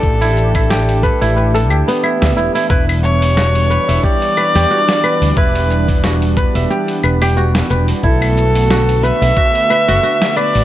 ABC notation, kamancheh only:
X:1
M:4/4
L:1/8
Q:"Swing 16ths" 1/4=90
K:Em
V:1 name="Kamancheh"
A6 z2 | B ^c3 d4 | B2 z6 | A3 e4 d |]